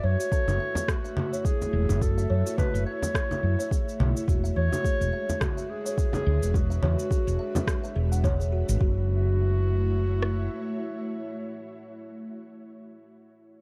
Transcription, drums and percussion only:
0.20 shaker medium
0.32 kick loud
0.32 shaker medium
0.48 low conga medium
0.48 shaker soft
0.75 frame drum medium
0.75 shaker medium
0.88 kick loud
0.88 cross-stick medium
0.88 shaker medium
1.05 shaker soft
1.17 low conga medium
1.33 shaker medium
1.45 kick loud
1.45 shaker medium
1.62 frame drum medium
1.62 shaker soft
1.89 low conga medium
1.89 shaker medium
2.02 kick loud
2.02 shaker medium
2.18 shaker soft
2.47 shaker medium
2.58 kick medium
2.58 low conga medium
2.58 shaker soft
2.75 shaker soft
3.02 frame drum medium
3.02 shaker medium
3.15 kick medium
3.15 cross-stick medium
3.15 shaker medium
3.31 low conga medium
3.31 shaker soft
3.60 shaker medium
3.71 kick loud
3.71 shaker medium
3.89 shaker soft
4.00 low conga medium
4.17 shaker medium
4.28 kick medium
4.28 shaker medium
4.45 shaker soft
4.73 low conga medium
4.73 shaker medium
4.85 kick medium
4.85 shaker medium
5.01 shaker soft
5.29 frame drum medium
5.29 shaker medium
5.41 kick loud
5.41 cross-stick medium
5.41 low conga medium
5.41 shaker soft
5.58 shaker soft
5.86 shaker medium
5.98 kick loud
5.98 shaker medium
6.13 frame drum medium
6.13 low conga medium
6.13 shaker soft
6.43 shaker medium
6.54 kick loud
6.54 frame drum medium
6.54 shaker medium
6.71 shaker soft
6.83 low conga medium
6.99 shaker medium
7.11 kick loud
7.11 shaker medium
7.28 shaker soft
7.55 low conga medium
7.55 frame drum loud
7.55 shaker medium
7.67 kick loud
7.67 cross-stick medium
7.67 shaker medium
7.84 shaker soft
8.12 shaker medium
8.24 kick loud
8.24 low conga medium
8.24 shaker medium
8.41 shaker soft
8.69 shaker medium
8.81 kick loud
10.22 cross-stick medium

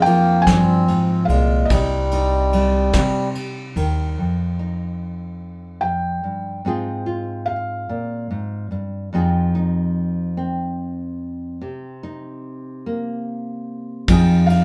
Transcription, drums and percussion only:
0.05 ride medium
0.47 kick medium
0.47 snare medium
0.47 ride medium
0.88 ride soft
1.29 ride medium
1.70 kick medium
1.70 ride medium
2.11 ride medium
2.53 ride medium
2.93 kick medium
2.93 snare medium
2.93 ride medium
3.35 ride medium
3.76 ride soft
14.08 kick medium
14.08 ride medium
14.50 ride medium

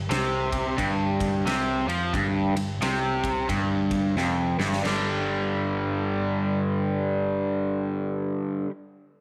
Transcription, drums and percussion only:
0.11 snare loud
0.11 ride loud
0.52 kick medium
0.52 ride medium
0.78 kick medium
0.78 ride loud
1.20 kick loud
1.20 ride medium
1.47 snare loud
1.47 ride loud
1.89 ride medium
2.14 kick loud
2.14 ride medium
2.57 ride medium
2.82 snare loud
2.82 ride loud
3.24 kick medium
3.24 ride medium
3.49 kick medium
3.49 ride loud
3.91 kick medium
3.91 ride medium
4.17 snare medium
4.60 snare medium
4.73 snare medium
4.85 snare medium
4.85 crash medium

